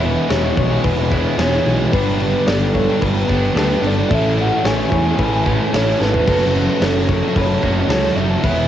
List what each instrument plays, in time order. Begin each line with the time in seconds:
Already playing: picked electric bass E1, overdriven electric guitar E2 B2, distorted electric guitar E3 G#3 B3 E4, clean electric guitar B4, soft synth lead E5
0.02 distorted electric guitar E2 B2 E3, overdriven electric guitar E3 G#3 B3 G#4, crash
0.29 picked electric bass E1, distorted electric guitar E2 B2 E3, overdriven electric guitar E2 B2 E3 G#3 B3 G#4, clean electric guitar C#5, snare, crash
0.42 distorted electric guitar B2 E3, overdriven electric guitar G#3 B3 G#4
0.46 overdriven electric guitar E3
0.56 picked electric bass B1, clean electric guitar C#5, muted distorted electric guitar stroke, muted overdriven electric guitar stroke, kick, crash
0.70 distorted electric guitar B2 E3, overdriven electric guitar E3 G#3 B3 G#4
0.84 picked electric bass E1, clean electric guitar B4, kick, crash
0.97 distorted electric guitar B2 E3, overdriven electric guitar E3 G#3 B3 G#4
1.10 distorted electric guitar E2 B2 E3 E4, overdriven electric guitar E3 G#3 B3, kick, crash
1.15 overdriven electric guitar G#4
1.37 picked electric bass E1, distorted electric guitar E2 B2 E3 E4, overdriven electric guitar E2 B2 E3 G#3, clean electric guitar G#4, soft synth lead C#5, snare, crash
1.41 overdriven electric guitar B3 G#4
1.53 snare
1.64 picked electric bass B1, distorted electric guitar E2 B2 E3, overdriven electric guitar E3 G#3, clean electric guitar G#4, crash
1.69 overdriven electric guitar B3 G#4
1.78 distorted electric guitar B2 E3, overdriven electric guitar G#3 B3 G#4
1.83 overdriven electric guitar E3
1.92 picked electric bass G1, distorted electric guitar G2 D3 G3, overdriven electric guitar G2 D3 G3 B3, clean electric guitar B4, soft synth lead B4, kick, crash
1.96 overdriven electric guitar D4 G4
2.06 distorted electric guitar D3 G3
2.19 distorted electric guitar G2 D3 G3, overdriven electric guitar G3 B3 D4 G4, soft synth lead B4, crash
2.46 picked electric bass G1, distorted electric guitar G2 D3 G3, overdriven electric guitar G2 D3 G3 B3 D4 G4, soft synth lead A4, clean electric guitar D5, snare, crash
2.60 distorted electric guitar D3 G3, overdriven electric guitar B3 D4 G4
2.64 overdriven electric guitar G3
2.74 soft synth lead A4, clean electric guitar C#5, muted distorted electric guitar stroke, muted overdriven electric guitar stroke, kick, crash
2.87 distorted electric guitar D3 G3, overdriven electric guitar B3 D4 G4
2.92 overdriven electric guitar G3
3.01 picked electric bass G1, clean electric guitar B4, soft synth lead B4, kick, crash
3.14 distorted electric guitar D3 G3, overdriven electric guitar D4 G4
3.18 overdriven electric guitar G3 B3
3.28 picked electric bass G1, distorted electric guitar G2 D3 G3, overdriven electric guitar G3 B3 D4 G4, kick, crash
3.55 picked electric bass D2, distorted electric guitar G2 D3 G3, overdriven electric guitar G2 D3 G3 B3 D4, clean electric guitar A4, snare, crash
3.59 overdriven electric guitar G4
3.82 picked electric bass G1, distorted electric guitar G2 D3, overdriven electric guitar G3 B3 D4 G4, clean electric guitar A4, crash
3.86 distorted electric guitar G3, soft synth lead D5
3.96 distorted electric guitar D3 G3, overdriven electric guitar B3 D4 G4
4.01 overdriven electric guitar G3
4.10 picked electric bass A1, distorted electric guitar A2 E3 A3 E4, overdriven electric guitar A2 E3 A3 C#4 A4, clean electric guitar A4, kick, crash
4.14 soft synth lead E5
4.23 distorted electric guitar E3 A3
4.36 distorted electric guitar A2 E3 A3, overdriven electric guitar E3 A3, crash
4.41 overdriven electric guitar C#4 A4, soft synth lead F#5
4.63 picked electric bass A1, overdriven electric guitar A2 E3 A3 C#4 A4, distorted electric guitar A2 E3 A3, clean electric guitar C#5, soft synth lead G#5, snare, crash
4.76 distorted electric guitar E3 A3, overdriven electric guitar C#4 A4
4.80 overdriven electric guitar A3
4.91 picked electric bass E2, clean electric guitar C#5, muted distorted electric guitar stroke, muted overdriven electric guitar stroke, kick, crash
5.02 distorted electric guitar A3, overdriven electric guitar C#4 A4
5.06 distorted electric guitar E3, overdriven electric guitar A3
5.18 picked electric bass A1, clean electric guitar B4, kick, crash
5.31 distorted electric guitar E3 A3, overdriven electric guitar A3 C#4 A4
5.43 distorted electric guitar A2 E3 A3 E4, overdriven electric guitar E3 A3, kick, crash
5.48 overdriven electric guitar C#4 A4
5.72 picked electric bass A1, overdriven electric guitar A2 E3 A3 C#4 A4, distorted electric guitar A2 E3 A3 E4, clean electric guitar A4, soft synth lead C#5, snare, crash
5.99 picked electric bass G#1, distorted electric guitar A2 E3 A3, overdriven electric guitar E3 A3 C#4, clean electric guitar A4, soft synth lead B4, snare
6.03 overdriven electric guitar A4
6.13 distorted electric guitar E3 A3, overdriven electric guitar C#4 A4, floor tom
6.17 overdriven electric guitar A3
6.25 picked electric bass F#1, overdriven electric guitar F#2 C#3 F#3 A3 C#4 A4, distorted electric guitar F#2 C#3, clean electric guitar A4, kick, crash
6.30 distorted electric guitar F#3 F#4
6.41 distorted electric guitar C#3 F#3
6.52 distorted electric guitar F#2, overdriven electric guitar F#3 A3 C#4 A4, crash
6.57 distorted electric guitar C#3 F#3
6.80 picked electric bass F#1, overdriven electric guitar F#2 C#3 F#3 A3 C#4 A4, distorted electric guitar F#2 C#3, clean electric guitar C#5, snare, crash
6.85 distorted electric guitar F#3, soft synth lead A4
6.95 distorted electric guitar F#3, overdriven electric guitar F#3 A3 C#4 A4
6.99 distorted electric guitar C#3
7.08 clean electric guitar C#5, muted overdriven electric guitar stroke, muted distorted electric guitar stroke, kick, crash
7.13 soft synth lead A4
7.22 distorted electric guitar C#3 F#3, overdriven electric guitar F#3 A3 C#4 A4
7.36 picked electric bass F#1, clean electric guitar B4, kick, crash
7.40 soft synth lead C#5
7.47 distorted electric guitar F#3, overdriven electric guitar F#3 A3 C#4 A4
7.52 distorted electric guitar C#3
7.61 picked electric bass F#1, distorted electric guitar F#2 C#3 F#4, overdriven electric guitar F#3 A3 C#4 A4, kick, crash
7.66 distorted electric guitar F#3
7.89 picked electric bass C#2, distorted electric guitar F#2 C#3 F#3 F#4, overdriven electric guitar F#2 C#3 F#3 A3 C#4 A4, clean electric guitar A4, soft synth lead C#5, snare, crash
8.04 snare
8.15 picked electric bass F#1, distorted electric guitar F#2 C#3, overdriven electric guitar F#3 A3 C#4 A4, clean electric guitar A4, soft synth lead E5, crash
8.20 distorted electric guitar F#3
8.28 overdriven electric guitar F#3 A3 C#4 A4, distorted electric guitar F#3
8.34 distorted electric guitar C#3
8.40 picked electric bass E1, overdriven electric guitar E2 B2 E3 B3 E4 G#4, distorted electric guitar E2, kick, crash
8.44 distorted electric guitar B2 E3 G#3, clean electric guitar B4
8.58 distorted electric guitar B2 E3